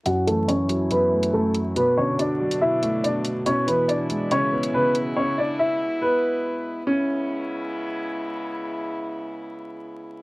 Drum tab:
HH |x-x-x-x-x--x--x-|x---x--x--x-x-x-|x-x-x-x-x--x--x-|----------------|

HH |----------------|----------------|